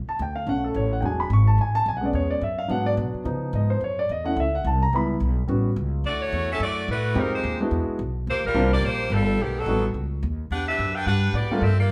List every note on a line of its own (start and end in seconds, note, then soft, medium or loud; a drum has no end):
0.07 0.19 A5 medium
0.07 muted upright bass stroke soft
0.19 0.46 D2 loud
0.19 0.36 G5 medium
0.36 0.46 F5 medium
0.46 0.74 B1 medium
0.46 1.00 D3 medium
0.46 1.00 A3 medium
0.46 1.00 C#4 medium
0.46 0.64 F#5 medium
0.64 0.75 A4 medium
0.74 1.02 A1 medium
0.74 0.92 C#5 medium
0.93 1.03 F#5 medium
1.01 1.29 E1 medium
1.01 1.22 F#3 medium
1.01 1.23 G#3 soft
1.01 1.23 D4 medium
1.01 1.03 G5 medium
1.06 1.20 G#5 medium
1.20 1.31 B5 medium
1.30 1.57 G#1 medium
1.30 1.48 C#6 medium
1.47 1.58 A5 medium
1.58 1.85 A1 medium
1.58 1.76 G#5 medium
1.75 1.86 A5 loud
1.86 2.13 B1 medium
1.86 1.96 G#5 medium
1.97 2.05 F#5 medium
2.01 2.39 G#3 medium
2.01 2.39 B3 soft
2.01 2.40 C#4 medium
2.05 2.14 D5 medium
2.13 2.41 E2 medium
2.13 2.31 C#5 medium
2.31 2.42 D5 medium
2.41 2.69 F#2 medium
2.41 2.59 E5 medium
2.59 2.70 F5 medium
2.68 2.96 G#2 medium
2.68 3.22 F#3 medium
2.68 3.22 B3 soft
2.68 3.23 D4 medium
2.68 2.86 F#5 medium
2.86 2.93 D5 medium
2.97 3.13 B2 medium
3.14 muted upright bass stroke soft
3.24 3.52 C#3 medium
3.24 3.78 F3 medium
3.24 3.78 B3 soft
3.24 3.79 D#4 medium
3.53 3.80 G#2 medium
3.53 3.71 D#5 medium
3.70 3.81 C5 medium
3.81 4.08 F#2 medium
3.81 3.99 C#5 medium
3.99 4.10 D5 medium
4.09 4.36 E2 medium
4.09 4.26 D#5 medium
4.24 4.42 A3 soft
4.24 4.42 C#4 soft
4.24 4.43 E4 medium
4.24 4.37 F#5 medium
4.36 4.64 C#2 medium
4.36 4.55 E5 medium
4.55 4.65 F#5 medium
4.64 4.92 C2 medium
4.64 4.82 A5 medium
4.83 4.93 A#5 medium
4.93 5.20 C#2 medium
4.93 5.13 G3 medium
4.93 5.13 B3 medium
4.93 5.14 E4 medium
4.93 5.36 B5 medium
5.20 5.48 B1 medium
5.47 5.76 A1 medium
5.47 5.68 G3 medium
5.47 5.69 B3 medium
5.47 5.69 C#4 medium
5.47 5.69 F#4 medium
5.76 6.04 C#2 loud
6.04 6.31 D2 medium
6.04 6.21 A3 medium
6.04 6.21 E4 medium
6.04 6.21 F#4 medium
6.04 6.21 D5 loud
6.22 6.50 A3 medium
6.22 6.50 E4 medium
6.22 6.50 F#4 loud
6.22 6.50 C#5 loud
6.32 6.59 E2 loud
6.52 6.61 C#4 medium
6.52 6.61 F#4 medium
6.52 6.61 A4 loud
6.52 6.61 E5 loud
6.60 6.87 F#2 medium
6.60 6.88 A3 medium
6.60 6.88 E4 medium
6.60 6.88 F#4 medium
6.60 6.88 D5 loud
6.88 7.15 A2 loud
6.88 7.18 A3 medium
6.88 7.18 E4 medium
6.88 7.18 F#4 medium
6.88 7.18 B4 loud
7.14 7.43 F2 medium
7.14 7.56 G#3 medium
7.14 7.57 C4 medium
7.14 7.57 D#4 medium
7.14 7.57 F4 medium
7.14 7.57 G4 medium
7.19 7.34 G3 medium
7.19 7.35 C4 medium
7.19 7.34 D#4 medium
7.19 7.34 A#4 loud
7.35 7.60 G#3 medium
7.35 7.60 D#4 medium
7.35 7.60 G4 medium
7.35 7.60 C5 medium
7.44 7.70 D#2 medium
7.60 7.97 G#3 medium
7.60 7.98 B3 medium
7.60 7.98 D4 medium
7.60 7.98 E4 medium
7.60 7.98 F#4 medium
7.71 7.87 E2 medium
7.88 muted upright bass stroke soft
7.99 8.26 B1 loud
8.27 8.36 D#2 medium
8.27 8.44 A#3 medium
8.27 8.44 F4 medium
8.27 8.44 G4 loud
8.27 8.45 C5 loud
8.36 8.44 D2 medium
8.45 8.54 A#1 medium
8.45 8.71 G3 medium
8.45 8.71 D4 medium
8.45 8.71 F4 medium
8.45 8.71 A#4 loud
8.54 8.82 C2 loud
8.54 8.70 G3 medium
8.54 8.70 A#3 medium
8.54 8.70 C4 medium
8.54 8.70 D4 medium
8.54 8.71 F4 medium
8.73 8.84 A#3 loud
8.73 8.83 F4 loud
8.73 8.83 G4 loud
8.73 8.83 D5 loud
8.82 9.09 A#1 medium
8.82 9.12 A#3 loud
8.82 9.12 F4 loud
8.82 9.13 G4 loud
8.82 9.13 C5 loud
9.10 9.37 G1 loud
9.10 9.40 G3 medium
9.10 9.40 D4 medium
9.10 9.40 F4 medium
9.10 9.40 A4 loud
9.38 9.66 B1 medium
9.42 9.57 D#3 medium
9.42 9.57 A3 medium
9.42 9.57 B3 medium
9.42 9.57 G4 loud
9.59 9.86 F#3 medium
9.59 9.85 B3 medium
9.59 9.85 D#4 medium
9.59 9.86 A4 medium
9.66 9.94 A1 loud
9.66 9.82 G3 medium
9.66 9.82 A3 medium
9.66 9.82 B3 medium
9.66 9.82 D#4 medium
9.66 9.83 F#4 medium
9.94 10.22 C#2 medium
10.23 10.50 D#2 medium
10.50 10.78 E2 medium
10.50 10.67 D4 loud
10.50 10.67 G4 loud
10.50 10.67 B4 loud
10.50 10.67 F#5 loud
10.68 10.94 D4 medium
10.68 10.94 G4 medium
10.68 10.94 B4 loud
10.68 10.94 E5 loud
10.79 11.06 F#2 loud
10.96 11.06 D4 medium
10.96 11.07 F#4 medium
10.96 11.06 B4 loud
10.96 11.07 G5 loud
11.06 11.33 G2 medium
11.06 11.33 D4 medium
11.06 11.33 G4 medium
11.06 11.33 B4 loud
11.06 11.33 F#5 loud
11.33 11.49 A2 medium
11.33 11.61 B3 medium
11.33 11.61 F#4 medium
11.33 11.61 G4 medium
11.33 11.61 D5 loud
11.50 11.61 G3 medium
11.50 11.61 A3 medium
11.50 11.62 A#3 medium
11.50 11.62 D4 medium
11.50 11.62 F4 medium
11.50 muted upright bass stroke soft
11.61 11.89 G2 medium
11.61 11.80 C4 medium
11.61 11.79 F4 medium
11.61 11.80 A4 loud
11.61 11.79 E5 loud
11.79 11.92 A#3 medium
11.79 11.92 F4 medium
11.79 11.92 G4 medium
11.79 11.92 D5 loud